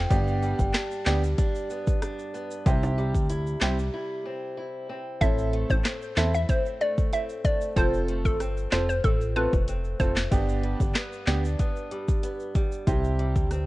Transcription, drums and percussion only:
0.11 kick, closed hi-hat, shaker
0.28 shaker
0.42 shaker
0.59 kick, shaker
0.73 cross-stick, snare, clap, closed hi-hat, shaker
0.91 shaker
1.05 snare, clap, shaker
1.23 shaker
1.38 kick, closed hi-hat, shaker
1.55 shaker
1.70 shaker
1.87 kick, shaker
2.02 cross-stick, closed hi-hat, shaker
2.19 shaker
2.34 shaker
2.51 shaker
2.66 kick, closed hi-hat, shaker
2.83 high timbale, shaker
2.98 shaker
3.15 kick, shaker
3.30 closed hi-hat, shaker
3.47 shaker
3.61 snare, clap, shaker
3.79 shaker
5.21 kick, closed hi-hat, shaker
5.38 shaker
5.53 closed hi-hat
5.70 kick, shaker
5.84 cross-stick, snare, clap, closed hi-hat, shaker
6.02 shaker
6.16 snare, clap, closed hi-hat, shaker
6.34 shaker
6.49 kick, closed hi-hat, shaker
6.66 shaker
6.81 closed hi-hat
6.98 kick, shaker
7.13 closed hi-hat, shaker
7.29 shaker
7.45 kick, closed hi-hat, shaker
7.61 shaker
7.77 kick, closed hi-hat, shaker
7.94 shaker
8.08 closed hi-hat
8.25 kick, shaker
8.40 cross-stick, closed hi-hat, shaker
8.57 shaker
8.71 snare, clap, closed hi-hat, shaker
8.89 shaker
9.04 kick, closed hi-hat, shaker
9.21 shaker
9.36 closed hi-hat
9.53 kick, shaker
9.68 closed hi-hat, shaker
9.85 shaker
10.00 kick, closed hi-hat, shaker
10.16 snare, clap, shaker
10.32 kick, closed hi-hat, shaker
10.49 shaker
10.64 closed hi-hat
10.80 kick, shaker
10.95 cross-stick, snare, clap, closed hi-hat, shaker
11.13 shaker
11.27 snare, clap, closed hi-hat, shaker
11.45 shaker
11.59 kick, closed hi-hat, shaker
11.76 shaker
11.91 closed hi-hat
12.08 kick, shaker
12.23 closed hi-hat, shaker
12.40 shaker
12.55 kick, closed hi-hat, shaker
12.72 shaker
12.87 kick, closed hi-hat, shaker
13.04 shaker
13.19 closed hi-hat
13.36 kick, shaker
13.51 cross-stick, closed hi-hat, shaker

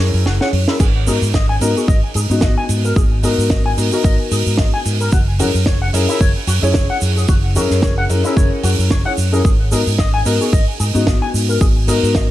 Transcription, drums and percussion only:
0.14 open hi-hat
0.26 snare
0.41 snare
0.53 open hi-hat
0.68 snare
0.80 kick, crash, shaker
1.07 open hi-hat, shaker
1.23 shaker
1.34 kick, snare, shaker
1.61 open hi-hat, shaker
1.77 shaker
1.88 kick, shaker
2.14 open hi-hat, shaker
2.31 shaker
2.41 kick, snare, shaker
2.69 open hi-hat, shaker
2.85 shaker
2.96 kick, shaker
3.23 open hi-hat, shaker
3.40 shaker
3.50 kick, snare, shaker
3.78 open hi-hat, shaker
3.92 shaker
4.04 kick, shaker
4.31 open hi-hat, shaker
4.47 shaker
4.58 kick, snare, shaker
4.85 open hi-hat, shaker
5.01 shaker
5.12 kick, shaker
5.39 open hi-hat, shaker
5.55 shaker
5.66 kick, snare, shaker
5.94 open hi-hat, shaker
6.09 shaker
6.21 kick, shaker
6.47 open hi-hat, shaker
6.64 shaker
6.74 kick, snare, shaker
7.01 open hi-hat, shaker
7.18 shaker
7.28 kick, shaker
7.56 open hi-hat, shaker
7.70 snare, shaker
7.82 kick, snare, shaker
8.09 open hi-hat, shaker
8.25 shaker
8.37 kick, shaker
8.63 open hi-hat, shaker
8.78 open hi-hat, shaker
8.91 kick, snare, shaker
9.18 open hi-hat, shaker
9.34 shaker
9.45 kick, shaker
9.72 open hi-hat, shaker
9.87 shaker
9.99 kick, snare, shaker
10.26 open hi-hat, shaker
10.41 shaker
10.53 kick, shaker
10.80 open hi-hat, shaker
10.95 shaker
11.07 kick, snare, shaker
11.35 open hi-hat, shaker
11.50 shaker
11.61 kick, shaker
11.88 open hi-hat, shaker
12.04 shaker
12.15 kick, snare, shaker

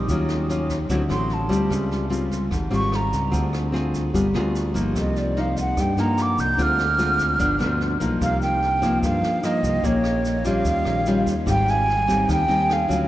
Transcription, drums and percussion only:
0.08 kick, snare, shaker
0.29 cross-stick, snare, shaker
0.49 snare, shaker
0.69 kick, snare, shaker
0.89 kick, snare, shaker
1.10 cross-stick, snare, shaker
1.30 snare
1.50 kick, snare, shaker
1.70 kick, cross-stick, snare, shaker
1.91 snare, shaker
2.11 snare, shaker
2.31 kick, snare, shaker
2.51 kick, cross-stick, snare, shaker
2.72 snare, shaker
2.92 cross-stick, snare
3.13 kick, snare, shaker
3.33 kick, snare, shaker
3.53 cross-stick, snare, shaker
3.74 snare
3.94 kick, snare, shaker
4.14 kick, snare, shaker
4.35 cross-stick, snare, shaker
4.55 snare, shaker
4.75 kick, snare, shaker
4.95 kick, cross-stick, snare, shaker
5.16 snare, shaker
5.36 snare
5.56 kick, snare, shaker
5.77 kick, cross-stick, snare, shaker
5.97 snare, shaker
6.18 cross-stick, snare, shaker
6.38 kick, snare, shaker
6.59 kick, snare, shaker
6.79 cross-stick, snare, shaker
6.99 snare, shaker
7.19 kick, snare, shaker
7.40 kick, snare, shaker
7.60 cross-stick, snare, shaker
7.81 snare
8.01 kick, snare, shaker
8.21 kick, cross-stick, snare, shaker
8.42 snare, shaker
8.62 snare
8.82 kick, snare, shaker
9.03 kick, cross-stick, snare, shaker
9.23 snare, shaker
9.43 cross-stick, snare, shaker
9.63 kick, snare, shaker
9.83 kick, snare, shaker
10.04 cross-stick, snare, shaker
10.25 snare, shaker
10.45 kick, snare, shaker
10.65 kick, snare, shaker
10.85 cross-stick, snare, shaker
11.06 snare, shaker
11.26 kick, snare, shaker
11.47 kick, cross-stick, snare, shaker
11.68 snare, shaker
11.89 snare
12.08 kick, snare, shaker
12.29 kick, cross-stick, snare, shaker
12.49 snare, shaker
12.69 cross-stick, snare
12.90 kick, snare, shaker

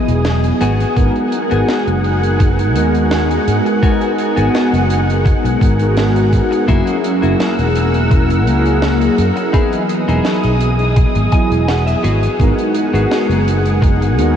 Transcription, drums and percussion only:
0.09 closed hi-hat
0.25 snare, closed hi-hat
0.44 closed hi-hat
0.61 closed hi-hat
0.80 closed hi-hat
0.97 kick, closed hi-hat
1.16 closed hi-hat
1.32 closed hi-hat
1.51 closed hi-hat
1.69 snare, closed hi-hat
1.87 closed hi-hat
2.04 closed hi-hat
2.23 closed hi-hat
2.40 kick, closed hi-hat
2.59 closed hi-hat
2.75 closed hi-hat
2.94 closed hi-hat
3.11 snare, closed hi-hat
3.31 closed hi-hat
3.47 closed hi-hat
3.66 closed hi-hat
3.83 kick, closed hi-hat
4.01 closed hi-hat
4.18 closed hi-hat
4.37 closed hi-hat
4.55 snare, closed hi-hat
4.74 closed hi-hat
4.90 closed hi-hat
5.10 closed hi-hat
5.25 kick, closed hi-hat
5.45 closed hi-hat
5.61 kick, closed hi-hat
5.79 closed hi-hat
5.97 snare, closed hi-hat
6.16 closed hi-hat
6.33 kick, closed hi-hat
6.52 closed hi-hat
6.68 kick, closed hi-hat
6.87 closed hi-hat
7.04 closed hi-hat
7.23 closed hi-hat
7.40 snare, closed hi-hat
7.59 closed hi-hat
7.75 closed hi-hat
7.94 closed hi-hat
8.11 kick, closed hi-hat
8.30 closed hi-hat
8.47 closed hi-hat
8.66 closed hi-hat
8.82 snare, closed hi-hat
9.01 closed hi-hat
9.18 closed hi-hat
9.37 closed hi-hat
9.54 kick, closed hi-hat
9.73 closed hi-hat
9.89 closed hi-hat
10.09 closed hi-hat
10.25 snare, closed hi-hat
10.43 closed hi-hat
10.61 closed hi-hat
10.79 closed hi-hat
10.96 kick, closed hi-hat
11.15 closed hi-hat
11.32 kick, closed hi-hat
11.52 closed hi-hat
11.69 snare, closed hi-hat
11.87 closed hi-hat
12.04 closed hi-hat
12.23 closed hi-hat
12.40 kick, closed hi-hat
12.58 closed hi-hat
12.75 closed hi-hat
12.95 closed hi-hat
13.12 snare, closed hi-hat
13.31 closed hi-hat
13.48 closed hi-hat
13.66 closed hi-hat
13.83 kick, closed hi-hat
14.02 closed hi-hat
14.19 closed hi-hat

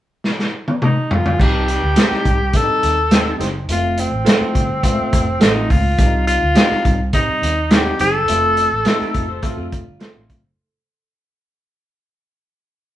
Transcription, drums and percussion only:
0.24 snare
0.39 snare
0.68 high tom
0.82 mid tom
1.11 floor tom
1.26 floor tom
1.40 kick, crash
1.68 closed hi-hat
1.96 snare, closed hi-hat
2.11 snare
2.25 kick, closed hi-hat
2.53 kick, closed hi-hat
2.83 closed hi-hat
3.11 snare, closed hi-hat
3.41 snare, closed hi-hat
3.69 closed hi-hat
3.98 closed hi-hat
4.26 snare, closed hi-hat
4.55 kick, closed hi-hat
4.83 kick, closed hi-hat
5.13 kick, closed hi-hat
5.41 snare, closed hi-hat
5.70 kick, open hi-hat
5.98 kick, closed hi-hat
6.27 closed hi-hat
6.55 snare, closed hi-hat
6.71 snare
6.85 kick, closed hi-hat
7.13 kick, closed hi-hat
7.43 closed hi-hat
7.71 snare, closed hi-hat
7.99 closed hi-hat
8.28 closed hi-hat
8.57 closed hi-hat
8.85 snare, closed hi-hat
9.01 snare
9.14 kick, closed hi-hat
9.43 kick, closed hi-hat
9.72 kick, closed hi-hat
10.00 snare, closed hi-hat
10.30 kick, closed hi-hat

